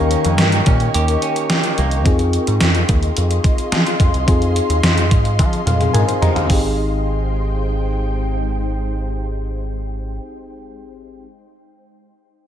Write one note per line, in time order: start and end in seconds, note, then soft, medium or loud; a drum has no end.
0.00 0.15 D#2 loud
0.00 0.62 D#3 medium
0.00 0.38 A#3 medium
0.00 2.01 C#4 medium
0.00 2.01 D#4 medium
0.00 0.93 G4 medium
0.00 2.01 G4 medium
0.00 2.01 A#4 medium
0.00 2.02 A#4 medium
0.00 2.01 D#5 medium
0.00 2.01 G5 medium
0.00 2.01 C#6 medium
0.11 0.66 C#4 medium
0.11 closed hi-hat medium
0.25 0.39 F2 medium
0.25 closed hi-hat medium
0.38 0.60 G2 medium
0.38 1.77 A#3 medium
0.38 snare loud
0.38 closed hi-hat medium
0.52 closed hi-hat medium
0.66 0.87 A#2 medium
0.66 1.21 C#4 medium
0.66 kick medium
0.66 closed hi-hat medium
0.80 closed hi-hat soft
0.94 1.15 D#2 medium
0.94 1.49 G4 medium
0.94 closed hi-hat medium
1.08 closed hi-hat medium
1.22 2.11 C#4 medium
1.22 closed hi-hat medium
1.36 closed hi-hat soft
1.50 2.11 G4 medium
1.50 snare medium
1.50 closed hi-hat medium
1.64 closed hi-hat medium
1.78 2.06 C2 medium
1.78 2.11 A#3 soft
1.78 closed hi-hat medium
1.91 closed hi-hat soft
2.04 2.37 F2 loud
2.04 4.23 C4 medium
2.04 4.23 D#4 medium
2.04 4.24 F4 medium
2.04 6.46 G#4 medium
2.04 4.24 G#4 medium
2.04 6.46 D#5 medium
2.04 6.46 F5 medium
2.04 6.46 C6 medium
2.04 kick loud
2.04 closed hi-hat medium
2.19 closed hi-hat soft
2.33 closed hi-hat medium
2.47 2.58 G#2 medium
2.47 closed hi-hat medium
2.61 2.82 F2 medium
2.61 snare loud
2.61 closed hi-hat medium
2.75 closed hi-hat medium
2.89 3.10 D#2 medium
2.89 kick medium
2.89 closed hi-hat medium
3.03 closed hi-hat soft
3.17 3.38 F2 medium
3.17 closed hi-hat medium
3.31 closed hi-hat soft
3.44 kick medium
3.44 closed hi-hat medium
3.58 closed hi-hat soft
3.72 3.83 F3 medium
3.72 snare medium
3.72 closed hi-hat medium
3.87 closed hi-hat medium
4.00 4.10 F2 medium
4.00 kick medium
4.00 closed hi-hat medium
4.14 4.24 C2 medium
4.14 closed hi-hat soft
4.26 4.59 F2 medium
4.26 5.63 C4 medium
4.26 5.63 D#4 medium
4.26 5.64 F4 medium
4.26 5.64 G#4 medium
4.26 kick medium
4.26 closed hi-hat medium
4.42 closed hi-hat soft
4.56 closed hi-hat medium
4.69 4.80 D#2 medium
4.69 closed hi-hat medium
4.83 5.11 F2 medium
4.83 snare loud
4.83 closed hi-hat medium
4.98 closed hi-hat medium
5.11 5.41 G#2 medium
5.11 kick medium
5.11 closed hi-hat medium
5.25 closed hi-hat soft
5.39 5.60 F3 medium
5.39 kick medium
5.39 closed hi-hat medium
5.39 high tom soft
5.53 closed hi-hat soft
5.66 5.87 F2 medium
5.66 5.92 F5 medium
5.66 closed hi-hat medium
5.66 mid tom medium
5.80 5.94 C4 soft
5.80 5.93 G#4 medium
5.80 closed hi-hat soft
5.80 mid tom medium
5.93 6.05 G#2 medium
5.93 6.07 A#4 medium
5.93 6.20 G#5 medium
5.93 closed hi-hat medium
5.93 mid tom medium
6.08 6.22 D#4 medium
6.08 6.21 C5 medium
6.08 closed hi-hat medium
6.22 6.32 F2 medium
6.22 6.35 G4 soft
6.22 6.35 D#5 medium
6.22 6.48 A#5 medium
6.22 closed hi-hat medium
6.22 floor tom medium
6.35 6.46 D#2 medium
6.35 6.51 G#4 soft
6.35 6.62 F5 medium
6.35 closed hi-hat soft
6.35 floor tom medium
6.47 10.18 G#1 medium
6.47 9.48 G#3 medium
6.47 10.17 C4 medium
6.47 10.18 D#4 medium
6.47 9.48 D#4 medium
6.47 10.18 G4 medium
6.47 9.48 C5 medium
6.47 9.48 G5 medium
6.47 kick medium
6.47 open hi-hat medium
6.52 10.19 G#4 medium